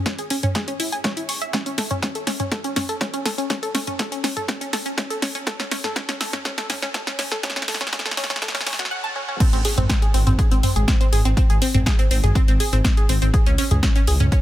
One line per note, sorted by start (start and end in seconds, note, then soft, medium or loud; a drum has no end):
0.06 0.12 C#4 loud
0.06 kick loud
0.06 snare medium
0.06 closed hi-hat medium
0.19 0.24 G#4 medium
0.19 closed hi-hat soft
0.30 0.37 C#4 loud
0.30 open hi-hat loud
0.43 0.49 C#4 loud
0.43 closed hi-hat soft
0.43 mid tom medium
0.55 0.61 G#4 medium
0.55 kick loud
0.55 snare medium
0.55 closed hi-hat medium
0.68 0.73 C#4 loud
0.68 closed hi-hat soft
0.80 0.89 E4 loud
0.80 open hi-hat loud
0.92 0.98 G#5 medium
0.92 closed hi-hat soft
1.04 1.10 C#5 medium
1.04 kick loud
1.04 snare medium
1.04 closed hi-hat medium
1.17 1.23 E4 medium
1.17 closed hi-hat soft
1.29 1.35 C#6 medium
1.29 open hi-hat loud
1.42 1.50 E5 loud
1.42 closed hi-hat soft
1.53 1.60 C#4 loud
1.53 kick loud
1.53 snare medium
1.53 closed hi-hat medium
1.66 1.72 C#4 loud
1.66 closed hi-hat soft
1.78 1.84 A4 medium
1.78 snare medium
1.78 open hi-hat loud
1.91 1.96 C#4 loud
1.91 closed hi-hat soft
1.91 mid tom medium
2.02 2.09 C#4 loud
2.02 kick loud
2.02 snare medium
2.02 closed hi-hat medium
2.15 2.21 A4 medium
2.15 closed hi-hat soft
2.27 2.33 C#4 loud
2.27 snare medium
2.27 open hi-hat loud
2.40 2.46 C#4 loud
2.40 closed hi-hat soft
2.40 mid tom medium
2.52 2.58 A4 medium
2.52 kick loud
2.52 snare medium
2.52 closed hi-hat medium
2.64 2.70 C#4 loud
2.64 closed hi-hat soft
2.76 2.82 C#4 loud
2.76 snare medium
2.76 mid tom medium
2.76 open hi-hat loud
2.89 2.95 A4 medium
2.89 closed hi-hat soft
3.01 3.07 C#4 loud
3.01 kick loud
3.01 snare medium
3.01 closed hi-hat medium
3.14 3.19 C#4 loud
3.14 closed hi-hat soft
3.25 3.32 A4 medium
3.25 snare medium
3.25 open hi-hat loud
3.38 3.44 C#4 loud
3.38 closed hi-hat soft
3.50 3.56 C#4 loud
3.50 kick loud
3.50 snare medium
3.50 closed hi-hat medium
3.63 3.68 A4 medium
3.63 closed hi-hat soft
3.75 3.81 C#4 loud
3.75 snare medium
3.75 open hi-hat loud
3.87 3.93 C#4 loud
3.87 closed hi-hat soft
3.87 mid tom medium
3.99 4.05 A4 medium
3.99 kick loud
3.99 snare medium
3.99 closed hi-hat medium
4.12 4.18 C#4 loud
4.12 closed hi-hat soft
4.24 4.30 C#4 loud
4.24 snare medium
4.24 open hi-hat loud
4.37 4.42 A4 medium
4.37 closed hi-hat soft
4.37 mid tom medium
4.48 4.55 C#4 loud
4.48 kick loud
4.48 snare medium
4.48 closed hi-hat medium
4.61 4.67 C#4 loud
4.61 closed hi-hat soft
4.73 4.79 A4 medium
4.73 snare medium
4.73 open hi-hat loud
4.86 4.91 C#4 loud
4.86 closed hi-hat soft
4.98 5.04 C#4 loud
4.98 kick loud
4.98 snare medium
4.98 closed hi-hat medium
5.10 5.16 A4 medium
5.10 closed hi-hat soft
5.22 5.28 C#4 loud
5.22 snare medium
5.22 open hi-hat loud
5.35 5.41 C#4 loud
5.35 closed hi-hat soft
5.47 5.53 A4 medium
5.47 kick loud
5.47 snare medium
5.47 closed hi-hat medium
5.60 5.65 C#4 loud
5.60 snare medium
5.60 closed hi-hat soft
5.71 5.78 C#4 loud
5.71 snare medium
5.71 open hi-hat loud
5.84 5.90 A4 medium
5.84 snare medium
5.84 closed hi-hat soft
5.84 mid tom medium
5.96 6.02 C#4 loud
5.96 kick loud
5.96 snare medium
5.96 closed hi-hat medium
6.09 6.14 C#4 loud
6.09 snare medium
6.09 closed hi-hat soft
6.21 6.27 A4 medium
6.21 snare loud
6.21 open hi-hat loud
6.33 6.39 C#4 loud
6.33 snare medium
6.33 closed hi-hat soft
6.33 mid tom loud
6.45 6.51 C#4 loud
6.45 kick loud
6.45 snare medium
6.45 closed hi-hat medium
6.58 6.64 A4 medium
6.58 snare medium
6.58 closed hi-hat soft
6.70 6.76 C#4 loud
6.70 snare loud
6.70 mid tom medium
6.70 open hi-hat loud
6.82 6.88 C#4 loud
6.82 snare medium
6.82 closed hi-hat soft
6.94 7.00 A4 medium
6.94 kick loud
6.94 snare loud
6.94 closed hi-hat medium
7.07 7.13 C#4 loud
7.07 snare medium
7.07 closed hi-hat soft
7.19 7.25 C#4 loud
7.19 snare loud
7.19 open hi-hat loud
7.32 7.37 A4 medium
7.32 snare medium
7.32 closed hi-hat soft
7.43 7.50 C#4 loud
7.43 kick loud
7.43 snare loud
7.43 closed hi-hat medium
7.50 snare medium
7.56 7.62 C#4 loud
7.56 snare medium
7.56 closed hi-hat soft
7.62 snare medium
7.68 7.74 A4 medium
7.68 snare loud
7.68 open hi-hat loud
7.74 snare medium
7.81 7.87 C#4 loud
7.81 snare medium
7.81 closed hi-hat soft
7.81 mid tom medium
7.87 snare loud
7.93 7.99 C#4 loud
7.93 kick loud
7.93 snare loud
7.93 closed hi-hat medium
7.99 snare loud
8.05 8.11 A4 medium
8.05 snare medium
8.05 closed hi-hat soft
8.11 snare medium
8.17 8.23 C#4 loud
8.17 snare loud
8.17 open hi-hat loud
8.24 snare medium
8.30 8.36 C#4 loud
8.30 snare medium
8.30 closed hi-hat soft
8.30 mid tom medium
8.36 snare medium
8.42 8.48 A4 medium
8.42 kick loud
8.42 snare loud
8.42 closed hi-hat medium
8.48 snare medium
8.55 8.60 C#4 loud
8.55 snare medium
8.55 open hi-hat medium
8.61 snare medium
8.67 8.73 C#4 medium
8.67 snare loud
8.67 open hi-hat loud
8.73 snare loud
8.79 8.85 F#4 medium
8.79 snare medium
8.79 closed hi-hat soft
8.85 snare medium
8.91 8.97 F#5 medium
9.04 9.10 A5 medium
9.16 9.25 C#4 medium
9.29 9.37 C#4 medium
9.40 9.46 C4 loud
9.40 kick loud
9.40 closed hi-hat medium
9.40 crash loud
9.53 9.61 G#1 medium
9.53 9.59 C4 loud
9.53 closed hi-hat soft
9.65 9.71 G#4 medium
9.65 open hi-hat loud
9.78 9.86 G#1 medium
9.78 9.83 C4 loud
9.78 closed hi-hat soft
9.78 mid tom medium
9.89 9.96 C4 loud
9.89 kick loud
9.89 snare loud
9.89 closed hi-hat medium
10.02 10.08 G#4 medium
10.02 closed hi-hat soft
10.14 10.23 G#1 medium
10.14 10.20 C4 loud
10.14 open hi-hat loud
10.27 10.35 G#1 medium
10.27 10.32 C4 loud
10.27 closed hi-hat soft
10.27 mid tom medium
10.39 10.45 G#4 medium
10.39 kick loud
10.39 closed hi-hat medium
10.51 10.60 G#1 medium
10.51 10.57 C4 loud
10.51 closed hi-hat soft
10.63 10.69 C4 loud
10.63 mid tom medium
10.63 open hi-hat loud
10.76 10.84 G#1 medium
10.76 10.82 G#4 medium
10.76 closed hi-hat soft
10.88 10.94 C4 loud
10.88 kick loud
10.88 snare loud
10.88 closed hi-hat medium
11.01 11.06 C4 loud
11.01 closed hi-hat soft
11.12 11.21 G#1 loud
11.12 11.19 G#4 medium
11.12 open hi-hat loud
11.25 11.33 G#1 medium
11.25 11.31 C4 loud
11.25 closed hi-hat soft
11.37 11.43 C4 loud
11.37 kick loud
11.37 closed hi-hat medium
11.50 11.58 G#1 medium
11.50 11.55 G#4 medium
11.50 closed hi-hat soft
11.62 11.68 C4 loud
11.62 open hi-hat loud
11.74 11.83 G#1 medium
11.74 11.80 C4 loud
11.74 closed hi-hat soft
11.74 mid tom medium
11.86 11.92 G#4 medium
11.86 kick loud
11.86 snare loud
11.86 closed hi-hat medium
11.99 12.05 C4 loud
11.99 closed hi-hat soft
12.11 12.20 G#1 medium
12.11 12.17 C4 loud
12.11 open hi-hat loud
12.23 12.32 G#1 medium
12.23 12.29 G#4 medium
12.23 closed hi-hat soft
12.23 mid tom medium
12.35 12.42 C4 loud
12.35 kick loud
12.35 closed hi-hat medium
12.48 12.56 G#1 medium
12.48 12.54 C4 loud
12.48 closed hi-hat soft
12.60 12.66 G#4 medium
12.60 open hi-hat loud
12.73 12.81 G#1 medium
12.73 12.78 C4 loud
12.73 closed hi-hat soft
12.85 12.91 C4 loud
12.85 kick loud
12.85 snare loud
12.85 closed hi-hat medium
12.97 13.03 G#4 medium
12.97 closed hi-hat soft
13.09 13.18 G#1 loud
13.09 13.15 C4 loud
13.09 open hi-hat loud
13.22 13.30 G#1 medium
13.22 13.28 C4 loud
13.22 closed hi-hat soft
13.34 13.40 G#4 medium
13.34 kick loud
13.34 closed hi-hat medium
13.46 13.55 C#2 medium
13.46 13.52 C#4 loud
13.46 closed hi-hat soft
13.58 13.65 C#4 loud
13.58 open hi-hat loud
13.71 13.79 C#2 medium
13.71 13.77 G#4 medium
13.71 closed hi-hat soft
13.71 mid tom medium
13.83 13.89 C#4 loud
13.83 kick loud
13.83 snare loud
13.83 closed hi-hat medium
13.96 14.01 C#4 loud
13.96 closed hi-hat soft
14.07 14.16 C#2 medium
14.07 14.14 G#4 medium
14.07 open hi-hat loud
14.20 14.28 C#2 medium
14.20 14.26 C#4 loud
14.20 closed hi-hat soft
14.20 mid tom medium
14.32 14.38 C#4 loud
14.32 kick loud
14.32 closed hi-hat medium